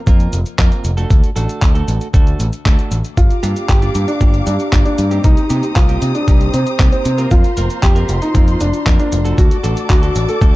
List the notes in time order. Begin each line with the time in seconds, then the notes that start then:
0.06 F2 A#3 C4 F4 A#4, kick, closed hi-hat, cabasa
0.20 closed hi-hat, cabasa
0.33 F1, closed hi-hat, cabasa
0.46 closed hi-hat, cabasa
0.58 F2 A#3 C4 F4 A#4, kick, clap, closed hi-hat, cabasa
0.72 closed hi-hat, cabasa
0.84 F1, closed hi-hat, cabasa
0.97 A3 D4 F#4 A4, closed hi-hat, cabasa
1.10 D2, kick, closed hi-hat, cabasa
1.24 closed hi-hat, cabasa
1.36 A1 A3 D4 F#4 A4, closed hi-hat, cabasa
1.49 closed hi-hat, cabasa
1.62 D2, kick, clap, closed hi-hat, cabasa
1.75 A3 D4 F#4 A4, closed hi-hat, cabasa
1.88 A1, closed hi-hat, cabasa
2.01 closed hi-hat, cabasa
2.14 D2 A3 D4 F#4 A4, kick, closed hi-hat, cabasa
2.27 closed hi-hat, cabasa
2.40 A1, closed hi-hat, cabasa
2.53 closed hi-hat, cabasa
2.65 D2 A3 D4 F#4 A4, kick, clap, closed hi-hat, cabasa
2.79 closed hi-hat, cabasa
2.91 A1, closed hi-hat, cabasa
3.05 closed hi-hat, cabasa
3.17 G1 F4 G4 F5 A#5 D6, kick, closed hi-hat, cabasa
3.30 closed hi-hat, cabasa
3.43 G2 A#3 D4 F4 G4, closed hi-hat, cabasa
3.56 closed hi-hat, cabasa
3.69 G1 G4, kick, clap, closed hi-hat, cabasa
3.82 A#3 D4 F4 G4, closed hi-hat, cabasa
3.95 G2, closed hi-hat, cabasa
4.08 D4, closed hi-hat, cabasa
4.20 G1 A#3 D4 F4 G4, kick, closed hi-hat, cabasa
4.34 closed hi-hat, cabasa
4.47 G2 D4, closed hi-hat, cabasa
4.60 closed hi-hat, cabasa
4.72 G1 A#3 D4 F4 G4, kick, clap, closed hi-hat, cabasa
4.85 D4, closed hi-hat, cabasa
4.98 G2, closed hi-hat, cabasa
5.11 A#3 C4 D#4 G4, closed hi-hat, cabasa
5.24 C2 D#4 G4 C5 D#6, kick, closed hi-hat, cabasa
5.37 closed hi-hat, cabasa
5.50 C3 A#3 C4 D#4 G4, closed hi-hat, cabasa
5.63 closed hi-hat, cabasa
5.76 C2 F4, kick, clap, closed hi-hat, cabasa
5.88 A#3 C4 D#4 G4, closed hi-hat, cabasa
6.02 C3, closed hi-hat, cabasa
6.15 D4, closed hi-hat, cabasa
6.27 C2 A#3 C4 D#4 G4, kick, closed hi-hat, cabasa
6.41 closed hi-hat, cabasa
6.54 C3 C4, closed hi-hat, cabasa
6.67 closed hi-hat, cabasa
6.79 C2 A#3 C4 D#4 G4, kick, clap, closed hi-hat, cabasa
6.92 C4, closed hi-hat, cabasa
7.05 C3, closed hi-hat, cabasa
7.18 A#3 C4 F4 A#4, closed hi-hat, cabasa
7.31 F2 F4 C6, kick, closed hi-hat, cabasa
7.44 closed hi-hat, cabasa
7.57 F1 A#3 C4 F4 A#4, closed hi-hat, cabasa
7.70 closed hi-hat, cabasa
7.83 F2 G4, kick, clap, closed hi-hat, cabasa
7.95 A#3 C4 F4 A#4, closed hi-hat, cabasa
8.09 F1, closed hi-hat, cabasa
8.22 D#4, closed hi-hat, cabasa
8.34 F2 A#3 C4 F4 A#4, kick, closed hi-hat, cabasa
8.48 closed hi-hat, cabasa
8.61 F1 D4, closed hi-hat, cabasa
8.74 closed hi-hat, cabasa
8.86 F2 A#3 C4 F4 A#4, kick, clap, closed hi-hat, cabasa
9.00 D4, closed hi-hat, cabasa
9.12 F1, closed hi-hat, cabasa
9.25 A3 D4 F#4 A4, closed hi-hat, cabasa
9.38 D2 F#4 D5 A5 D6, kick, closed hi-hat, cabasa
9.51 closed hi-hat, cabasa
9.63 A1 A3 D4 F#4 A4, closed hi-hat, cabasa
9.77 closed hi-hat, cabasa
9.90 D2 F#4, kick, clap, closed hi-hat, cabasa
10.02 A3 D4 F#4 A4, closed hi-hat, cabasa
10.16 A1, closed hi-hat, cabasa
10.29 A4, closed hi-hat, cabasa
10.41 D2 A3 D4 F#4 A4, kick, closed hi-hat, cabasa